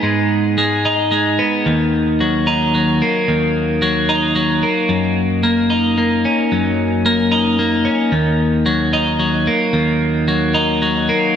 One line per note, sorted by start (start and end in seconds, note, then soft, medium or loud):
0.00 1.39 G#2 medium
0.00 0.57 G#3 medium
0.00 1.13 B3 soft
0.00 0.85 D#4 medium
0.58 1.10 G#3 medium
0.85 2.47 D#4 medium
1.11 1.66 G#3 medium
1.39 1.66 B3 medium
1.66 3.01 D#2 medium
2.20 2.74 F#3 medium
2.47 4.09 D#4 medium
2.75 3.82 F#3 soft
3.02 4.63 A#3 medium
3.28 4.63 D#2 medium
3.82 4.35 F#3 medium
4.09 5.70 D#4 medium
4.36 5.43 F#3 medium
4.63 5.43 A#3 soft
4.89 6.24 F#2 medium
5.43 5.97 A#3 medium
5.70 7.31 D#4 medium
5.98 7.05 A#3 medium
6.25 7.60 C#4 medium
6.52 7.87 F#2 medium
7.06 7.59 A#3 medium
7.32 8.93 D#4 medium
7.59 8.65 A#3 medium
7.85 8.13 C#4 medium
8.12 9.48 D#2 medium
8.66 9.18 F#3 medium
8.93 10.29 D#4 medium
9.19 10.27 F#3 medium
9.47 10.83 A#3 medium
9.73 11.09 D#2 medium
10.28 10.81 F#3 medium
10.54 11.36 D#4 medium
10.82 11.36 F#3 medium
11.09 11.36 A#3 medium